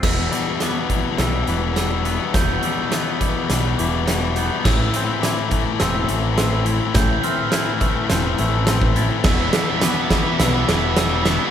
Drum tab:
CC |x---------------|----------------|x---------------|----------------|
HH |--x-x-x-x-x-x-x-|x-x-x-x-x-x-x-x-|--x-x-x-x-x-x-x-|x-x-x-x-x-x-x-x-|
SD |o---o---o---o---|o---o---o---o---|o---o---o---o---|o---o---o---o---|
BD |o-----o---------|o-----o---------|o-----o---------|o-----o------o--|

CC |x---------------|
HH |--x-x-x-x-x-x-x-|
SD |o-o-o-o-o-o-o-o-|
BD |o-----o---------|